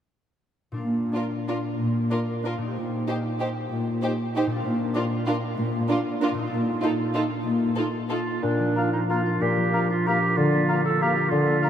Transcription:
0.72 harp A#2 D4
0.76 harp F4 A#4
0.82 cello section A#2
1.13 viola section D4, violin section F4 A#4
1.48 viola section D4, violin section F4 A#4
1.79 cello section A#2
2.11 viola section D4, violin section F4 A#4
2.44 viola section D4, violin section F4 A#4
2.58 harp A#2
2.62 harp D#4
2.67 harp G4
2.71 harp C5
2.76 cello section A#2
3.08 viola section D#4, violin section G4 C5
3.40 viola section D#4, violin section G4 C5
3.71 cello section A#2
4.02 viola section D#4, violin section G4 C5
4.36 viola section D#4, violin section G4 C5
4.47 harp A#2
4.51 harp D4
4.56 harp F4
4.60 harp A#4
4.65 cello section A#2
4.95 viola section D4, violin section F4 A#4
5.27 viola section D4, violin section F4 A#4
5.57 cello section A#2
5.88 viola section D4, violin section F4 A#4
6.22 viola section D4, violin section F4 A#4
6.34 harp A#2
6.38 harp D#4
6.43 harp F4
6.47 harp A4
6.51 cello section A#2
6.82 viola section D#4, violin section F4 A4
7.14 viola section D#4, violin section F4 A4
7.45 cello section A#2
7.76 viola section D#4, violin section F4 A4
8.10 viola section D#4, clarinet F4, violin section F4 A4
8.43 bassoon A#2, harp A#2, clarinet D4
8.59 harp F3
8.76 french horn section A#3 F4, harp D4, oboe F5, flute A#5
8.93 clarinet D#4, harp F4
9.09 french horn section A#3 F4, clarinet F4, harp A#4, oboe F5, flute A#5
9.26 harp F4
9.41 harp A#2, bassoon A#2, clarinet G4
9.57 harp F3
9.73 french horn section A#3 F4, harp D4, oboe F5, flute A#5
9.90 harp F4, clarinet F4
10.06 french horn section A#3 F4, clarinet G4, harp A#4, oboe F5, flute A#5
10.22 harp F4
10.37 bassoon D3, harp D3, clarinet F4
10.53 harp A#3
10.69 french horn section A#3 F4, harp D4, oboe F5, flute A#5
10.85 harp F4, clarinet A4
11.01 french horn section A#3 F4, clarinet G4, harp A#4, oboe F5, flute A#5
11.16 harp F4
11.30 bassoon D3, harp D3, clarinet F4
11.46 harp A#3
11.62 french horn section A#3 F4, harp D4, oboe F5, flute A#5

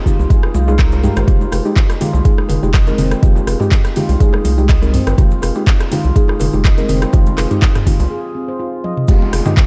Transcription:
0.06 synth stab G#3 D#4 G4, handpan F4, kick, low conga, cabasa
0.19 analog synth bass C2, low bongo, cabasa
0.30 synth stab G#3 D#4 G#4, handpan G#4, kick, closed hi-hat, high conga, cabasa
0.43 cross-stick, high bongo, low bongo
0.54 analog synth bass C2, handpan F4, high conga, cabasa
0.67 synth stab G#3 D#4 G#4, handpan F5, low bongo, cabasa
0.78 handpan A#4, kick, cross-stick, clap, closed hi-hat, cabasa
0.92 closed hi-hat, low bongo, cabasa
1.03 synth stab G#3 D#4 G4, handpan A#4, mid tom, high conga, cabasa
1.16 analog synth bass G#1, handpan C5, cross-stick, closed hi-hat, high bongo, low bongo, cabasa
1.27 analog synth bass F1, synth stab G#3 D#4 G4, handpan F4, kick, closed hi-hat, high conga, low conga, cabasa
1.41 low bongo, high conga, cabasa
1.52 analog synth bass F1, handpan G#4, cross-stick, open hi-hat, high bongo, cabasa
1.65 synth stab G#3 D#4 G4, low bongo, cabasa
1.76 handpan D#4, kick, clap, closed hi-hat, cabasa
1.89 cross-stick, closed hi-hat, low bongo, cabasa
2.01 synth stab G#3 D#4 G4, handpan F4, open hi-hat, low conga, cabasa
2.13 analog synth bass C2, low bongo, cabasa
2.25 synth stab G#3 D#4 G#4, handpan G#4, kick, closed hi-hat, cabasa
2.38 cross-stick, low bongo
2.49 analog synth bass F1, open hi-hat, high bongo, low conga, cabasa
2.62 analog synth bass F1, synth stab G#3 D#4 G4, low bongo, cabasa
2.74 handpan D#5, kick, cross-stick, clap, closed hi-hat, cabasa
2.87 synth stab G#3 D#4 A#4, handpan C4, closed hi-hat, low bongo, high conga, cabasa
2.98 analog synth bass F1, handpan C4, open hi-hat, low conga, cabasa
3.11 cross-stick, closed hi-hat, low bongo, cabasa
3.23 analog synth bass F1, synth stab G#3 D#4 G4, handpan F4, kick, closed hi-hat, high conga, low conga, cabasa
3.36 low bongo, high conga, cabasa
3.47 analog synth bass F1, handpan G#4, cross-stick, open hi-hat, high bongo, cabasa
3.60 synth stab G#3 D#4 G4, mid tom, low bongo, cabasa
3.72 kick, clap, closed hi-hat, cabasa
3.84 cross-stick, closed hi-hat, low bongo, cabasa
3.96 synth stab G#3 D#4 G4, handpan F4, open hi-hat, low conga, cabasa
4.09 analog synth bass C2, open hi-hat, low bongo, cabasa
4.20 synth stab G#3 D#4 G#4, handpan G#4, kick, closed hi-hat, high conga, cabasa
4.33 cross-stick, high bongo, low bongo
4.45 analog synth bass C2, open hi-hat, high conga, cabasa
4.58 synth stab G#3 D#4 G4, low bongo, cabasa
4.69 handpan D#5, kick, cross-stick, clap, closed hi-hat, cabasa
4.82 synth stab G#3 D#4 A#4, handpan C4, closed hi-hat, low bongo, cabasa
4.94 handpan C4, mid tom, open hi-hat, high conga, cabasa
5.07 analog synth bass G#1, cross-stick, closed hi-hat, high bongo, low bongo, cabasa
5.18 analog synth bass F1, synth stab G#3 D#4 G4, handpan F4, kick, closed hi-hat, high conga, low conga, cabasa
5.31 low bongo, high conga, cabasa
5.42 analog synth bass F1, handpan G#4, cross-stick, open hi-hat, high bongo, cabasa
5.55 synth stab G#3 D#4 G4, low bongo, cabasa
5.67 handpan D#4, kick, clap, closed hi-hat, cabasa
5.80 cross-stick, closed hi-hat, low bongo, cabasa
5.92 synth stab G#3 D#4 G4, handpan F4, open hi-hat, low conga, cabasa
6.04 analog synth bass C2, low bongo, cabasa
6.16 synth stab G#3 D#4 G#4, handpan G#4, kick, closed hi-hat, cabasa
6.28 cross-stick, low bongo
6.40 analog synth bass F1, open hi-hat, high bongo, low conga, cabasa
6.53 analog synth bass F1, synth stab G#3 D#4 G4, low bongo, cabasa
6.64 handpan D#5, kick, cross-stick, clap, closed hi-hat, cabasa
6.78 synth stab G#3 D#4 A#4, handpan C4, closed hi-hat, low bongo, high conga, cabasa
6.89 analog synth bass F1, handpan C4, open hi-hat, low conga, cabasa
7.02 cross-stick, closed hi-hat, low bongo, cabasa
7.13 analog synth bass F1, synth stab G#3 D#4 G4, handpan F4, kick, closed hi-hat, high conga, low conga, cabasa
7.26 closed hi-hat, low bongo, high conga, cabasa
7.37 analog synth bass F1, handpan G#4, cross-stick, clap, open hi-hat, high bongo, cabasa
7.51 synth stab G#3 D#4 G4, closed hi-hat, mid tom, low bongo, cabasa
7.62 handpan D#4, kick, clap, closed hi-hat, cabasa
7.75 cross-stick, closed hi-hat, mid tom, low bongo, cabasa
7.86 synth stab G#3 D#4 G4, handpan F4, kick, open hi-hat, low conga, cabasa
7.99 analog synth bass C2, open hi-hat, low bongo, cabasa
8.11 handpan G#4
8.35 handpan C4
8.48 handpan C5
8.59 handpan F4
8.84 handpan D#5, high tom
8.97 mid tom
9.08 analog synth bass F1, synth stab G#3 D#4 G4, handpan F4, kick, closed hi-hat, downlifter, high conga, cabasa
9.22 high conga
9.33 analog synth bass F1, handpan G#4, cross-stick, open hi-hat, cabasa
9.46 synth stab G#3 D#4 G4, mid tom, low conga, cabasa
9.57 handpan D#4, kick, clap, closed hi-hat, cabasa

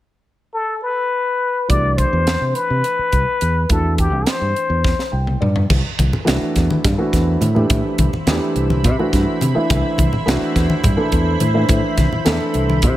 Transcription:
0.54 muted trumpet A4
0.83 muted trumpet B4
1.68 fingered electric bass C2, grand piano E3 A3 D4 F#4, muted trumpet D5, kick, closed hi-hat
1.97 muted trumpet C5, kick, closed hi-hat
2.13 fingered electric bass E2
2.27 snare, closed hi-hat
2.41 fingered electric bass C3
2.54 muted trumpet B4, closed hi-hat
2.70 fingered electric bass C3
2.84 closed hi-hat
2.99 muted fingered electric bass stroke
3.12 fingered electric bass C2, kick, closed hi-hat
3.41 fingered electric bass E2, closed hi-hat
3.69 fingered electric bass E2, grand piano E3 A3 D4 F#4, muted trumpet A4, kick, closed hi-hat
3.98 muted trumpet G4, kick, closed hi-hat
4.13 fingered electric bass C2
4.27 muted trumpet C5, snare, closed hi-hat
4.41 fingered electric bass G2
4.56 closed hi-hat
4.70 fingered electric bass E2
4.84 kick, snare
4.99 snare
5.12 fingered electric bass C2, grand piano G5
5.27 mid tom
5.40 fingered electric bass G2, grand piano D5, mid tom
5.56 floor tom
5.68 fingered electric bass C2, ambient pad E4 C5 E5 B5, kick, crash, muted conga
5.99 fingered electric bass C2, kick, closed hi-hat, high conga
6.13 low conga
6.25 fingered electric bass C2, grand piano E3 A3 D4 F#4, snare, closed hi-hat
6.56 fingered electric bass E2, kick, snare, closed hi-hat
6.70 muted conga, high conga, low conga
6.84 fingered electric bass G2, kick, snare, closed hi-hat, low conga
6.98 grand piano E3 A3 D4 F#4, low conga
7.13 fingered electric bass E2, kick, snare, closed hi-hat
7.41 fingered electric bass A2, closed hi-hat, high conga
7.55 grand piano E3 A3 D4 G4, low conga
7.70 fingered electric bass A2, kick, closed hi-hat, muted conga
7.98 fingered electric bass C2, kick, closed hi-hat, high conga
8.13 low conga
8.27 fingered electric bass E2, grand piano E3 A3 D4 G4, snare, closed hi-hat
8.56 fingered electric bass C2, closed hi-hat
8.70 muted conga, high conga, low conga
8.84 fingered electric bass C3, kick, closed hi-hat, low conga
8.99 grand piano E3 A3 D4 F#4, low conga
9.13 fingered electric bass G2, kick, snare, closed hi-hat
9.41 fingered electric bass C3, closed hi-hat, high conga
9.55 grand piano E3 A3 D4 E4, muted fingered electric bass stroke
9.70 fingered electric bass C2, kick, closed hi-hat, muted conga
9.98 fingered electric bass C2, kick, closed hi-hat, high conga
10.13 low conga
10.26 fingered electric bass C2, grand piano E3 A3 D4 F#4, snare, closed hi-hat
10.56 fingered electric bass E2, kick, snare, closed hi-hat
10.70 muted conga, high conga, low conga
10.83 fingered electric bass G2, kick, closed hi-hat, low conga
10.97 grand piano E3 A3 D4 A4, low conga
11.12 fingered electric bass E2, kick, closed hi-hat
11.40 fingered electric bass A2, closed hi-hat, high conga
11.54 grand piano E3 A3 D4 E4
11.69 fingered electric bass A2, kick, closed hi-hat, muted conga, low conga
11.97 fingered electric bass C2, kick, snare, closed hi-hat, high conga
12.12 low conga
12.25 fingered electric bass E2, grand piano E3 A3 D4 A4, snare, closed hi-hat
12.40 low conga
12.54 fingered electric bass C2, closed hi-hat
12.70 muted conga, high conga
12.82 fingered electric bass C3, kick, closed hi-hat, low conga

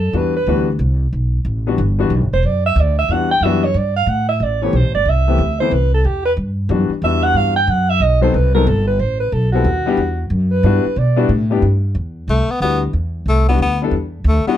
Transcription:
Already playing: upright bass F#2, alto saxophone A4
0.13 upright bass E2, grand piano E3 G3 B3 D4 F#4
0.17 alto saxophone B4
0.37 alto saxophone B4
0.47 upright bass D2, grand piano E3 G3 B3 D4 F#4
0.79 upright bass C2
1.13 upright bass B1
1.45 upright bass A1
1.67 grand piano E3 G3 B3 D4 F#4
1.78 upright bass G1
1.99 grand piano E3 G3 B3 D4 F#4
2.10 upright bass B1
2.22 upright bass G1
2.33 upright bass E1, alto saxophone C5
2.43 upright bass F#2, alto saxophone D5
2.66 alto saxophone E5
2.76 upright bass D2
2.80 alto saxophone D5
2.99 alto saxophone E5
3.08 upright bass E2, grand piano E3 G3 B3 D4, alto saxophone F#5
3.13 grand piano F#4
3.31 alto saxophone G5
3.41 upright bass F#2, grand piano E3 G3, alto saxophone E5
3.45 grand piano B3 D4 F#4
3.64 alto saxophone C#5
3.74 upright bass G2, alto saxophone D5
3.96 alto saxophone F5
4.06 upright bass A2, alto saxophone F#5
4.29 alto saxophone E5
4.40 upright bass A1, alto saxophone D5
4.62 grand piano E3 A3 B3 C4 G4, alto saxophone C#5
4.73 upright bass B1, alto saxophone C5
4.84 upright bass A1
4.95 upright bass G1, alto saxophone D5
5.05 upright bass C2, alto saxophone E5
5.28 grand piano E3 A3 B3 C4 G4
5.38 upright bass D2
5.60 grand piano E3 A3 B3 C4 E4, alto saxophone C5
5.71 upright bass C2, alto saxophone B4
5.94 alto saxophone A4
6.04 upright bass E2, alto saxophone G4
6.25 alto saxophone B4
6.37 upright bass G2
6.69 upright bass F#2, grand piano E3 G3 B3 D4 F#4
6.89 muted upright bass stroke
7.02 upright bass E2, grand piano E3 G3 B3 D4 F#4, alto saxophone E5
7.23 alto saxophone F#5
7.34 upright bass G2, alto saxophone F5
7.56 alto saxophone G5
7.67 upright bass F#2, alto saxophone F#5
7.90 alto saxophone E5
8.00 upright bass B1, alto saxophone D#5
8.22 grand piano F#3 B3 C4 D#4 A4, alto saxophone C5
8.34 upright bass C2, alto saxophone B4
8.54 grand piano F#3 B3 C4 D#4 A4, alto saxophone A#4
8.67 upright bass G1, alto saxophone A4
8.87 alto saxophone B4
8.99 upright bass A1, alto saxophone C5
9.20 alto saxophone B4
9.32 upright bass B1, alto saxophone A4
9.52 grand piano G3 B3 C4 E4 A4, alto saxophone F#4
9.64 upright bass D#2
9.86 grand piano G3 B3 D4 E4 G4
9.97 upright bass E2
10.30 upright bass F#2
10.51 alto saxophone B4
10.63 upright bass G2, grand piano G3 B3 D4 E4 F#4
10.85 muted upright bass stroke
10.96 upright bass B2, alto saxophone D5
11.16 grand piano G3 B3 D4 E4 F#4
11.29 upright bass A2
11.50 grand piano G3 B3 D4 E4 G4
11.62 upright bass G2
11.95 upright bass E2
12.28 upright bass C2, tenor saxophone A3
12.48 tenor saxophone B3, muted upright bass stroke
12.60 upright bass D2, grand piano G3 B3 D4 E4 F#4, tenor saxophone B3
12.93 upright bass E2
13.26 upright bass C2, tenor saxophone A3
13.48 grand piano G3 B3 D4 E4 F#4, tenor saxophone B3
13.58 upright bass D2, tenor saxophone B3
13.82 grand piano G3 B3 D4 E4 A4
13.91 upright bass E2
14.24 upright bass D2, tenor saxophone A3
14.45 grand piano G3 B3 D4 E4 F#4, tenor saxophone B3, muted upright bass stroke

